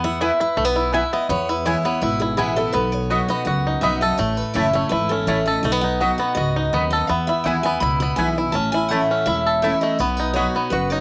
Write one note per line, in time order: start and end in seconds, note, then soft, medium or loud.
0.00 0.30 E2 loud
0.00 0.36 B3 medium
0.00 0.21 F#5 loud
0.04 0.20 E4 medium
0.21 0.30 B3 medium
0.21 0.39 E4 medium
0.21 0.31 E4 loud
0.21 0.31 B4 loud
0.21 0.40 E5 medium
0.21 0.31 G#5 medium
0.40 0.75 E4 medium
0.40 0.90 B4 medium
0.57 1.02 B1 medium
0.57 0.65 A3 medium
0.65 0.93 B3 medium
0.76 0.93 E4 medium
0.93 1.03 B3 medium
0.93 1.03 E4 medium
0.93 1.30 E4 medium
0.93 1.03 B4 medium
0.93 1.13 E5 medium
0.93 1.03 G#5 loud
1.13 1.28 B3 medium
1.13 1.30 D#5 medium
1.29 1.74 E2 loud
1.29 1.99 E2 medium
1.29 1.85 B3 medium
1.29 1.49 C#5 medium
1.49 1.65 E4 medium
1.49 1.66 B4 medium
1.65 1.84 E3 medium
1.65 1.84 G#3 medium
1.65 1.75 B3 medium
1.65 1.85 B3 medium
1.65 1.76 E4 medium
1.65 2.02 E4 medium
1.65 1.83 E4 medium
1.65 1.76 B4 medium
1.65 1.84 C#5 medium
1.65 1.76 G#5 loud
1.84 2.35 B3 medium
1.84 2.02 B3 soft
1.84 2.01 E4 medium
1.84 2.01 C#5 medium
2.01 2.33 G#1 medium
2.01 2.71 B2 medium
2.01 2.21 E4 medium
2.01 2.22 B4 medium
2.20 2.56 E4 medium
2.20 2.36 G#4 medium
2.37 2.69 A1 medium
2.37 2.56 E3 loud
2.37 2.57 G#3 loud
2.37 2.47 B3 medium
2.37 2.73 B3 medium
2.37 2.57 B3 medium
2.37 2.48 E4 medium
2.37 2.55 E4 medium
2.37 2.56 G#4 medium
2.37 2.48 B4 medium
2.37 2.48 G#5 loud
2.56 2.74 B3 soft
2.56 2.73 E4 medium
2.56 2.75 E4 medium
2.56 2.73 A4 medium
2.73 3.19 B1 medium
2.73 3.43 B2 medium
2.73 3.26 B3 medium
2.73 2.92 B4 medium
2.92 3.29 C#5 loud
3.10 3.29 F#3 medium
3.10 3.20 B3 medium
3.10 3.29 B3 medium
3.10 3.30 D#4 medium
3.10 3.20 F#4 medium
3.10 3.46 F#4 medium
3.10 3.29 F#4 medium
3.10 3.20 D#5 loud
3.10 3.21 B5 medium
3.29 3.80 B3 medium
3.29 3.47 D#4 medium
3.29 3.46 F#4 medium
3.29 3.44 D#5 medium
3.45 3.77 C#2 medium
3.45 4.16 F#2 medium
3.45 3.99 F#4 medium
3.45 3.81 F#5 medium
3.67 4.16 D#4 medium
3.81 4.14 B1 medium
3.81 4.02 F#3 medium
3.81 3.92 B3 medium
3.81 4.19 B3 medium
3.81 4.02 B3 loud
3.81 4.02 D#4 loud
3.81 3.93 F#4 medium
3.81 4.01 F#4 loud
3.81 3.93 D#5 loud
3.81 4.01 E5 medium
3.81 3.93 B5 medium
4.01 4.18 F#4 medium
4.01 4.19 A4 medium
4.01 4.18 D#5 medium
4.18 4.42 A1 medium
4.18 4.88 A2 medium
4.18 4.71 A3 medium
4.18 4.37 C#5 medium
4.37 4.54 B4 medium
4.54 4.86 F#1 medium
4.54 4.73 E3 medium
4.54 4.74 A3 medium
4.54 4.65 A3 medium
4.54 4.74 C#4 medium
4.54 4.72 E4 loud
4.54 4.91 E4 medium
4.54 4.65 E4 medium
4.54 4.72 C#5 medium
4.54 4.65 C#5 loud
4.54 4.66 A5 medium
4.73 5.25 A3 medium
4.73 4.91 C#4 soft
4.73 4.91 E4 medium
4.73 4.89 C#5 medium
4.89 5.22 G#1 medium
4.89 5.60 E2 medium
4.89 5.44 E4 medium
4.89 5.11 B4 medium
5.09 5.61 C#4 medium
5.09 5.26 A4 medium
5.27 5.58 A1 medium
5.27 5.46 E3 medium
5.27 5.46 A3 medium
5.27 5.37 A3 medium
5.27 5.64 A3 medium
5.27 5.46 C#4 medium
5.27 5.37 E4 medium
5.27 5.44 E4 loud
5.27 5.45 C#5 medium
5.27 5.38 C#5 medium
5.27 5.38 A5 loud
5.46 5.64 C#4 soft
5.46 5.63 E4 medium
5.46 5.64 A4 medium
5.46 5.61 D#5 medium
5.63 6.09 B1 loud
5.63 6.33 B2 medium
5.63 5.72 A3 medium
5.63 5.81 D#5 loud
5.72 6.01 B3 medium
5.81 6.34 D#4 medium
5.81 6.16 F#5 loud
6.00 6.19 F#3 medium
6.00 6.10 B3 medium
6.00 6.20 B3 medium
6.00 6.20 D#4 medium
6.00 6.10 F#4 medium
6.00 6.36 F#4 medium
6.00 6.19 F#4 medium
6.00 6.10 D#5 loud
6.00 6.11 B5 medium
6.18 6.70 B3 medium
6.18 6.36 F#4 medium
6.18 6.34 F#5 medium
6.22 6.37 D#4 soft
6.35 6.68 C#2 medium
6.35 6.72 G#2 medium
6.35 6.89 F#4 medium
6.35 6.89 D#5 loud
6.56 7.06 D#4 medium
6.73 7.04 D#2 medium
6.73 7.08 F#2 medium
6.73 6.83 B3 medium
6.73 7.08 B3 medium
6.73 6.83 F#4 medium
6.73 6.83 D#5 medium
6.73 6.83 B5 medium
6.90 7.10 A4 medium
6.90 7.07 D#5 medium
7.07 7.79 E2 medium
7.07 7.32 E2 medium
7.07 7.61 B3 medium
7.07 7.26 E5 medium
7.27 7.46 E4 medium
7.27 7.44 E5 loud
7.44 7.76 D#2 medium
7.44 7.64 E3 medium
7.44 7.65 G#3 medium
7.44 7.55 B3 medium
7.44 7.65 B3 medium
7.44 7.55 E4 medium
7.44 7.81 E4 medium
7.44 7.63 E4 loud
7.44 7.55 B4 medium
7.44 7.63 F#5 loud
7.44 7.56 G#5 medium
7.63 8.01 B3 medium
7.63 7.82 B3 soft
7.63 7.81 E4 medium
7.63 7.80 G#5 medium
7.80 8.12 C#2 medium
7.80 8.51 B2 medium
7.80 8.18 E4 medium
7.80 7.99 B5 loud
8.00 8.52 B3 medium
8.00 8.16 B5 loud
8.16 8.49 B1 medium
8.16 8.37 E3 medium
8.16 8.37 G#3 medium
8.16 8.27 B3 medium
8.16 8.37 B3 medium
8.16 8.28 E4 medium
8.16 8.37 E4 medium
8.16 8.36 E4 loud
8.16 8.28 B4 medium
8.16 8.52 G#5 loud
8.16 8.28 G#5 loud
8.37 8.55 B3 soft
8.37 8.54 E4 medium
8.37 8.55 E4 medium
8.52 8.99 A1 medium
8.52 9.23 A2 medium
8.52 9.07 C#4 medium
8.52 8.71 A5 loud
8.72 9.24 E4 medium
8.72 8.88 G#5 loud
8.88 9.25 E3 medium
8.88 9.00 A3 medium
8.88 9.26 A3 medium
8.88 9.43 A3 medium
8.88 9.26 C#4 medium
8.88 9.00 E4 medium
8.88 9.00 C#5 medium
8.88 9.27 F#5 loud
8.88 9.01 A5 medium
8.93 9.26 E4 loud
9.11 9.61 C#4 medium
9.26 9.72 E1 medium
9.26 9.96 E2 medium
9.26 9.63 E4 medium
9.26 9.61 E5 loud
9.47 9.96 A4 medium
9.62 9.98 E3 medium
9.62 9.73 A3 medium
9.62 9.98 A3 loud
9.62 9.99 C#4 loud
9.62 9.73 E4 medium
9.62 10.00 E4 medium
9.62 9.99 E4 loud
9.62 9.73 C#5 medium
9.62 9.81 E5 medium
9.62 9.73 A5 medium
9.81 10.00 A3 medium
9.81 9.99 D#5 medium
9.99 10.45 B1 loud
9.99 10.69 B2 medium
9.99 10.55 B3 medium
9.99 10.17 C#5 medium
10.17 10.69 D#4 medium
10.17 10.33 B4 medium
10.33 10.54 F#3 medium
10.33 10.45 B3 medium
10.33 10.55 B3 medium
10.33 10.55 D#4 loud
10.33 10.45 F#4 medium
10.33 10.71 F#4 medium
10.33 10.53 F#4 loud
10.33 10.68 C#5 medium
10.33 10.46 D#5 medium
10.33 10.46 B5 loud
10.55 11.00 B3 medium
10.55 10.72 D#4 soft
10.55 10.71 F#4 medium
10.70 11.00 F#1 medium
10.70 11.00 F#2 medium
10.70 11.00 F#4 medium
10.70 10.90 B4 medium
10.90 11.00 D#4 medium
10.90 11.00 C#5 medium